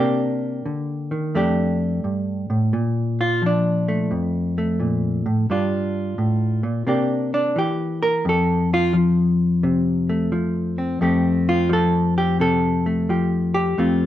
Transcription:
Already playing: C3 A#3 D4
0.00 G4
0.66 D3
1.11 D#3
1.35 F2 A3 D4 G4
2.04 G2
2.50 A2
2.73 A#2
3.21 F4
3.42 F3
3.46 D4
3.88 A3
4.11 F2
4.58 A3
4.80 A#2
5.26 A2
5.50 G2 D4 F4
6.18 A2
6.63 A#2
6.87 C3 A#3 D4 G4
7.34 D4
7.56 E3 G4
8.03 A#4
8.25 F2
8.29 A4
8.74 F4
8.93 F3
9.63 C3
10.09 A3
10.32 F3
10.78 C4
11.01 F2 A3 C4 G4
11.49 F4
11.69 F3 A4
12.18 G4
12.40 C3 A4
12.86 A3
13.09 F3 G4
13.54 G4
13.78 F2 A3 C4 F4

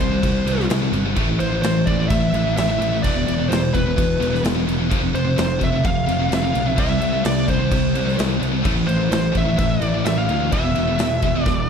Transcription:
0.00 C2 C3 G3 C5, kick, crash
0.11 C3 G3
0.23 C2 C3 G3, kick, crash
0.46 C2 C3 G3, crash
0.57 C3 G3, snare
0.70 C2 C3 G3, snare, crash
0.82 C3 G3
0.92 G1 C3 G3, crash
1.06 C3 G3
1.16 A1 A2 E3 A3, kick, crash
1.28 A2 E3
1.40 A1 A2 E3 C5, crash
1.52 A2 E3
1.62 A1 A2 E3 C5, snare, crash
1.86 A1 A2 E3 D5, kick, crash
2.00 A2 E3
2.09 A1 A2 E3 E5, kick, crash
2.34 A1 A2 E3, crash
2.48 A2 E3
2.57 A1 A2 E3 E5, snare, crash
2.70 A2 E3
2.80 A1 A2 E3, crash
2.93 A2 E3
3.03 E1 E2 B2 E3 D5, kick, crash
3.16 E2 B2
3.27 E1 E2 B2, crash
3.38 E2 B2
3.49 E1 E2 B2 C5, crash
3.53 snare
3.74 E1 E2 B2 B4, kick, crash
3.86 E2 B2
3.96 E1 E2 B2, kick, crash
4.20 E1 E2 B2, crash
4.33 E2 B2, snare
4.44 E1 E2 B2, snare, crash
4.55 E2 B2
4.68 E1 E2 B2, crash
4.79 E2 B2
4.90 F1 F2 C3 F3, kick, crash
5.01 F2 C3
5.13 F1 F2 C3 C5, crash
5.25 F2 C3
5.36 F1 F2 C3 C5, snare, crash
5.59 F1 F2 C3, kick, crash
5.64 E5
5.72 F2 C3
5.83 F1 F2 C3 F5, kick, crash
6.06 F1 F2 C3, crash
6.19 F2 C3
6.29 F1 F2 C3, snare, crash
6.34 F5
6.42 F2 C3
6.54 B1 F2 C3, crash
6.66 F2 C3
6.76 C2 C3 G3 C4 E5, kick, crash
6.89 C3 G3
7.01 C2 C3 G3, crash
7.12 C3 G3
7.24 C2 C3 G3 D5, snare, crash
7.48 C2 C3 G3 C5, kick, crash
7.60 C3 G3
7.72 C2 C3 G3, kick, crash
7.95 C2 C3 G3, crash
8.05 C3 G3, snare
8.16 C2 C3 G3, snare, crash
8.29 C3 G3
8.40 C2 C3 G3, crash
8.52 C3 G3
8.62 A1 A2 E3 A3, kick, crash
8.74 A2 E3
8.86 A1 A2 E3 C5, crash
8.97 A2 E3
9.09 A1 A2 E3 C5, crash
9.13 snare
9.32 A1 A2 E3, kick, crash
9.37 E5
9.45 A2 E3
9.57 A1 A2 E3 E5, kick, crash
9.71 D5
9.81 A1 A2 E3, crash
9.94 A2 E3
10.05 A1 A2 E3 E5, snare, crash
10.18 A2 E3 F5
10.29 D2 A2 E3, crash
10.41 A2 E3
10.52 E1 E2 B2 E3 E5, kick, crash
10.64 E2 B2
10.75 E1 E2 B2, crash
10.88 E2 B2
10.98 E1 E2 B2, snare, crash
11.22 E1 E2 B2, kick, crash
11.35 E2 B2
11.44 E1 E2 B2 D5, kick, snare

